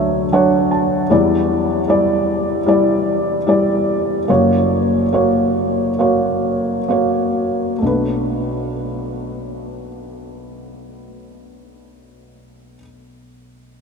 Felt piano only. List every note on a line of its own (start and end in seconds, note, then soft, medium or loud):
0.00 1.06 D2 medium
0.00 1.06 D3 medium
0.00 0.32 F#3 medium
0.00 0.33 D4 medium
0.00 0.34 C#5 medium
0.00 0.30 E5 medium
0.32 1.01 F#3 medium
0.32 1.01 D4 medium
0.32 1.02 C#5 medium
0.32 0.69 F#5 medium
0.71 1.07 A5 medium
1.10 4.25 E2 medium
1.10 4.25 E3 medium
1.10 1.79 G3 medium
1.10 1.79 E4 medium
1.10 1.80 D5 medium
1.88 2.58 G3 medium
1.88 2.58 E4 medium
1.88 2.59 D5 medium
2.66 3.37 G3 medium
2.66 3.38 E4 medium
2.66 3.38 D5 medium
3.47 4.19 G3 medium
3.47 4.19 E4 medium
3.47 4.20 D5 medium
4.28 7.78 F#1 medium
4.28 7.78 F#2 medium
4.28 5.02 A#3 medium
4.28 5.03 F#4 medium
4.28 5.03 C#5 medium
5.13 5.89 A#3 medium
5.13 5.89 F#4 medium
5.13 5.89 C#5 medium
5.99 6.78 A#3 medium
5.99 6.78 F#4 medium
5.99 6.79 C#5 medium
6.88 7.71 A#3 medium
6.88 7.71 F#4 medium
6.88 7.72 C#5 medium
7.78 12.77 B1 medium
7.78 12.73 A3 medium
7.78 12.77 D4 soft
7.86 12.81 B4 medium